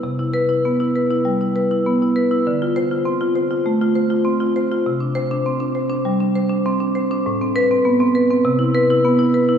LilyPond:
\new Staff \with { instrumentName = "Marimba" } { \time 4/4 \key c \major \tempo 4 = 100 << { r8 b'8 r2. | r8 c''8 r2. | r8 c''8 r2. | r8 b'8 r4. b'8 r4 | } \\ { c16 e'8 e'16 b16 e'16 b'16 e'16 g16 e'16 b'16 e'16 b16 e'16 b'16 e'16 | d16 f'8 f'16 c'16 f'16 c''16 f'16 a16 f'16 c''16 f'16 c'16 f'16 c''16 f'16 | c16 d'8 d'16 c'16 d'16 c''16 d'16 g16 d'16 c''16 d'16 c'16 d'16 c''16 d'16 | a,16 c'8 c'16 b16 c'16 b'16 c'16 c16 e'8 e'16 b16 e'16 b'16 e'16 | } >> }